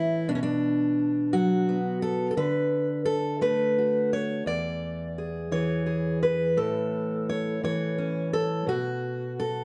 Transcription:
Already playing: A2 E3 E4
0.28 B2 D4
0.35 C#4
0.43 D4
1.33 F#3 F#4
1.69 B3
2.02 A4
2.31 A4
2.37 D3 B4
3.05 A4
3.41 A3 B4
3.78 F#4
4.13 C#5
4.46 E2 D5
5.18 G#4
5.52 E3 C#5
5.86 G#4
6.23 B4
6.57 A2 A4
7.29 C#5
7.63 E3 C#5
7.98 C#4
8.33 A4
8.67 B2 F#4
9.40 A4

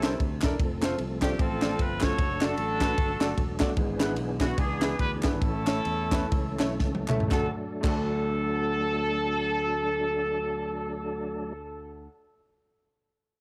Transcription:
Already playing: C2 C3 C#4 E4 A4
0.03 D4 E4 A4 A#4 C5, snare, clap, ride
0.20 D2, kick, ride
0.41 E1 D4 E4 A4 A#4 D5, kick, snare, clap, ride
0.59 F1 F3 A3 C4 A4, kick, ride
0.82 A3 C4 F4 A4 C5, snare, clap, ride
0.98 C2, ride
1.22 A3 C4 F4 G4 A4 D5, kick, snare, clap, ride
1.39 A1 C4 F4 A4, kick, ride
1.62 A3 C4 F4 A4 D5, snare, clap, ride
1.79 G1 B4, kick, ride
2.00 A3 C4 F4 F#4 A4 C5 C#5, kick, snare, clap, ride
2.18 F#1 F#3 A3 D4, kick, ride
2.41 A3 D4 F#4 A4 D5, snare, clap, ride
2.57 A1, ride
2.80 A3 D4 F#4 A4 B4, kick, snare, clap, ride
2.98 G1, kick, ride
3.20 F#1 A3 D4 F#4 A4 D5, snare, clap, ride
3.38 E1, kick, ride
3.59 G1 A3 D4 F#4 A4 D5, kick, snare, clap, ride
3.76 G#1 G#2 E3 B3 G#4, kick, ride
3.99 B3 D4 E4 G#4 B4, snare, clap, ride
4.16 B1, ride
4.40 B3 D4 E4 F#4 G#4 B4, kick, snare, clap, ride
4.58 C#2 B3 D4 G#4, kick, ride
4.81 B3 D4 E4 G#4 B4, snare, clap, ride
4.99 D2 B4, kick, ride
5.23 G#1 B3 C#4 D4 E4 G#4 A4 B4, kick, snare, clap, ride
5.41 A1 A2 A3 C#4 A4, kick, ride
5.67 A3 C#4 E4 A4 C#5, snare, clap, ride
5.85 E2, ride
6.11 A3 C#4 E4 A4 B4, kick, snare, clap, ride
6.32 C#2, kick, ride
6.59 B1 A3 C#4 E4 A4 C#5, snare, clap, ride
6.80 C#2, kick, snare
6.95 high tom
7.08 C#2 A3 C#4 E4 A4 E5, clap, mid tom
7.20 floor tom
7.28 D2 F#3 A3 D4 F#4 A4, kick, snare, clap
7.34 A4
7.81 D2 A3 D4 F#4 A4, kick, clap, crash
7.86 A4

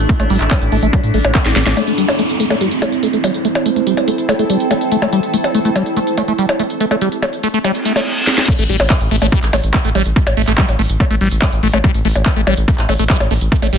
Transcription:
Already playing: A3 D4 E4 A4 A5
0.09 A3, kick, closed hi-hat
0.20 A1 A3, closed hi-hat, percussion blips
0.30 A1 G3, open hi-hat
0.41 A1, clap, closed hi-hat
0.51 A3, kick, clap, closed hi-hat, percussion blips
0.62 A1, closed hi-hat
0.72 A1 A3, open hi-hat
0.83 A1 A3, closed hi-hat
0.93 G3, kick, closed hi-hat, percussion blips
1.04 A2, closed hi-hat
1.14 A1 A3, open hi-hat
1.25 A1, percussion blips
1.35 A#3, kick, clap, closed hi-hat
1.46 A1 E4, snare, closed hi-hat
1.56 A1 A3, snare, open hi-hat
1.67 A1 A3, snare, closed hi-hat, percussion blips
1.77 A3 C4 E4 C5, closed hi-hat, percussion blips, downlifter
1.87 A3, closed hi-hat
1.98 G3, closed hi-hat
2.08 closed hi-hat, percussion blips
2.19 A3, closed hi-hat
2.29 closed hi-hat
2.40 A3, closed hi-hat
2.50 A3 A4 A5, closed hi-hat, percussion blips
2.61 G3, closed hi-hat
2.71 closed hi-hat
2.82 A3, closed hi-hat, percussion blips
2.92 closed hi-hat
3.03 A3, closed hi-hat
3.13 A3, closed hi-hat
3.24 G3, closed hi-hat, percussion blips
3.34 closed hi-hat
3.45 A3, closed hi-hat
3.55 closed hi-hat, percussion blips
3.66 A3, closed hi-hat
3.76 A3, closed hi-hat
3.87 G3, closed hi-hat
3.97 closed hi-hat, percussion blips
4.08 A3, closed hi-hat
4.18 closed hi-hat
4.29 A3, closed hi-hat, percussion blips
4.39 A3, closed hi-hat
4.50 G3, closed hi-hat
4.60 closed hi-hat
4.71 A3, closed hi-hat, percussion blips
4.81 closed hi-hat
4.92 A3, closed hi-hat
5.02 A3, closed hi-hat, percussion blips
5.13 G3, closed hi-hat
5.23 closed hi-hat
5.34 A3, closed hi-hat
5.44 closed hi-hat, percussion blips
5.55 A3, closed hi-hat
5.65 A3, closed hi-hat
5.76 G3, closed hi-hat, percussion blips
5.86 closed hi-hat
5.97 A3, closed hi-hat
6.07 closed hi-hat
6.18 A3, closed hi-hat, percussion blips
6.28 A3, closed hi-hat
6.39 G3, closed hi-hat
6.49 closed hi-hat, percussion blips
6.60 A3, closed hi-hat
6.70 closed hi-hat
6.81 A3, closed hi-hat
6.91 A3, closed hi-hat, percussion blips
7.01 G3, closed hi-hat
7.12 closed hi-hat
7.22 A3, closed hi-hat, percussion blips
7.33 closed hi-hat
7.43 A3, closed hi-hat
7.54 A3, closed hi-hat
7.64 G3, closed hi-hat, percussion blips, reverse cymbal
7.75 closed hi-hat
7.85 A3, closed hi-hat
7.96 A3, closed hi-hat, percussion blips
8.27 snare
8.38 snare
8.48 A3, kick, closed hi-hat, crash, percussion blips
8.59 A1 A3, closed hi-hat
8.69 A1 G3, open hi-hat
8.80 A1, closed hi-hat, percussion blips
8.90 A3, kick, clap, closed hi-hat
9.01 A1, closed hi-hat
9.11 A1 A3, open hi-hat
9.22 A1 A3, closed hi-hat, percussion blips
9.32 G3, kick, closed hi-hat
9.43 A1, clap, closed hi-hat
9.53 A1 A3, open hi-hat, percussion blips
9.64 A1, closed hi-hat
9.74 A3, kick, clap, closed hi-hat
9.85 A1 A3, closed hi-hat
9.95 A1 G3, open hi-hat, percussion blips
10.06 A1, closed hi-hat
10.16 A3, kick, closed hi-hat
10.27 A1, closed hi-hat, percussion blips
10.37 A1 A3, open hi-hat
10.48 A1 A3, clap, closed hi-hat
10.58 G3, kick, clap, closed hi-hat
10.69 A1, closed hi-hat, percussion blips
10.79 A1 A3, open hi-hat
10.90 A1, closed hi-hat
11.00 A3, kick, closed hi-hat, percussion blips
11.11 A1 A3, closed hi-hat
11.21 A1 G3, open hi-hat
11.32 A1, closed hi-hat
11.42 A3, kick, clap, closed hi-hat, percussion blips
11.53 A1, closed hi-hat
11.63 A1 A3, open hi-hat
11.73 A1 A3, closed hi-hat, percussion blips
11.84 G3, kick, closed hi-hat
11.95 A1, closed hi-hat
12.05 A1 A3, open hi-hat
12.15 A1, closed hi-hat, percussion blips
12.26 A3, kick, clap, closed hi-hat
12.36 A1 A3, closed hi-hat
12.47 A1 G3, open hi-hat, percussion blips
12.57 A1, closed hi-hat
12.68 A3, kick, closed hi-hat
12.78 A1, clap, closed hi-hat
12.89 A1 A3, open hi-hat, percussion blips
12.99 A1 A3, closed hi-hat
13.10 G3, kick, clap, closed hi-hat
13.20 A1, closed hi-hat, percussion blips
13.31 A1 A3, open hi-hat
13.41 A1, closed hi-hat
13.52 A3, kick, closed hi-hat
13.62 A1 A3, closed hi-hat, percussion blips
13.73 A1 G3, open hi-hat

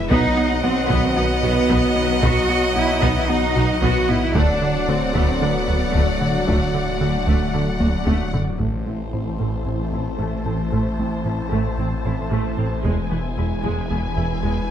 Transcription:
Already playing: E1 G#3 B4
0.10 B1 B2 D#3 F#3 B3 D#4 F#4 B4 D#5 F#5, taiko
0.37 B3
0.63 B1 B3 C4 F#4
0.90 B1 B2 B3, taiko
1.04 C4
1.16 B1 B3 D#4 F#4
1.43 B1 B2 D#4 F#4
1.70 B1 B2 B3, taiko
1.96 B3
2.22 B1 B2 B3 F#4, taiko
2.49 B3
2.76 B1 B3 E4 F#4
3.02 B1 B2 B3 D#4, taiko
3.17 E4
3.29 B1 B3 D#4 F#4
3.56 B1 B2 D#4 F#4
3.82 B1 B2 B3 F#4, taiko
4.09 B3 E4, taiko low-mid
4.23 E4
4.35 D1 D2 D3 F#3 A3 D4 F#4 D5 F#5, taiko
4.62 D3
4.88 D2 D3 A3 C4 F#4
5.15 D2 D3 A3 B3, taiko
5.30 C4
5.42 D2 D3 A3 B3 D4
5.68 D2 F#3 F#4
5.94 D2 D3 A3, taiko
6.21 D3, taiko low-mid
6.35 G3
6.47 D2 D3 A3, taiko
6.75 D3
7.01 D2 D3 A3 F#4
7.27 D2 D3 A3, taiko
7.54 D2 D3 A3 D4
7.80 D2 F#3 F#4, taiko high
8.06 D2 D3 A3, taiko high
8.33 D3, taiko low
8.59 A1 A2 E3 A3 E4 C5 A5, taiko
8.86 A1 A2 A3 C4 E4
9.13 A1 A2 C4 E4
9.40 A1 A2 A3
9.66 A1 A2 C4
9.92 A1 A2 C4 E4
10.19 A1 A2 A3
10.46 A1 A2 C4 A4
10.72 A1 A2 A3
10.99 A1 A2 A3 C4 E4
11.25 A1 A2 C4 E4
11.52 A1 A2 A3
11.78 A1 A2 C4
12.05 A1 A2 C4 E4
12.31 A1 A2 A3
12.58 A1 A2 C4 A4
12.84 E1 E2 E3 G#3 E4 G#4 G#5, taiko
13.11 E1 E2 E3 B3
13.38 E1 E2 G#3 E4
13.64 E1 E2 E3 G#3
13.91 E1 E2 G#3 B3 B4
14.17 E1 E2 G#3 E4
14.43 E1 E2 E3 G#3

